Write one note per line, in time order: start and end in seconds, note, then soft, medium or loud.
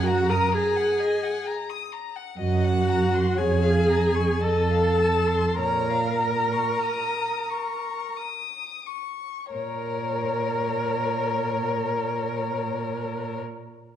0.00 0.36 F#2 medium
0.05 0.31 F#4 medium
0.05 0.32 F#5 medium
0.05 0.31 A#5 soft
0.29 0.55 A#4 medium
0.29 0.54 A#5 medium
0.29 0.53 D#6 soft
0.52 1.48 G#4 medium
0.52 1.47 G#5 medium
0.52 0.78 A#5 medium
0.76 1.01 F#5 soft
1.00 1.24 D#5 soft
1.23 1.48 F#5 soft
1.47 1.71 A#5 medium
1.69 1.94 D#6 soft
1.92 2.17 A#5 soft
2.16 2.39 F#5 soft
2.39 3.21 F#2 medium
2.39 3.40 F#4 medium
2.39 2.66 D#5 medium
2.39 3.39 F#5 medium
2.64 2.90 F#5 soft
2.89 3.16 A#5 soft
3.14 3.36 C6 soft
3.37 4.25 F2 medium
3.37 4.45 G#4 medium
3.37 3.64 C#5 medium
3.37 4.43 G#5 medium
3.63 3.91 F5 soft
3.89 4.16 A#5 soft
4.14 4.42 C#6 soft
4.42 5.40 F2 medium
4.42 5.60 A4 medium
4.42 4.73 D#5 soft
4.42 5.59 A5 medium
4.71 5.01 F5 soft
4.99 5.28 A5 soft
5.27 5.58 C6 soft
5.58 6.63 A#2 soft
5.58 8.14 A#4 medium
5.58 5.91 C#5 soft
5.58 8.14 A#5 medium
5.90 6.22 F5 soft
6.20 6.54 A#5 soft
6.52 6.84 C#6 soft
6.85 7.51 D#6 medium
7.49 8.18 C#6 soft
8.17 8.88 D#6 soft
8.86 9.52 C#6 soft
9.52 13.39 A#2 soft
9.52 13.38 A#4 medium
9.52 13.38 A#4 soft
9.52 13.37 C#5 soft